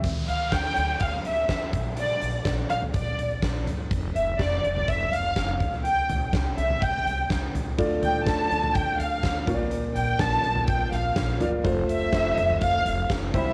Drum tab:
HH |x-x-x-x-x-x-x-x-|x-x-x-x-x-x-x-x-|x-x-x-x-x-x-x-x-|x-x-x-x-x-x-x-x-|
SD |----o-------o---|----o-------o---|----o-------o---|----o-------o---|
FT |----------------|-------o------o-|-------o------o-|--o----o------o-|
BD |o---o---o---o-o-|----o---o---o---|o---o---o---o-o-|----o---o---o---|

HH |x-x-x-x-x-x-x-x-|x-x-x-x-x-x-x-x-|x-x-x-x-x-x-x-x-|
SD |----o-------o---|----o-----o-o---|----o-------o---|
FT |--o----o------o-|-------o------o-|-------o------o-|
BD |o---o---o---o-o-|----o---o---o---|o---o---o---o-o-|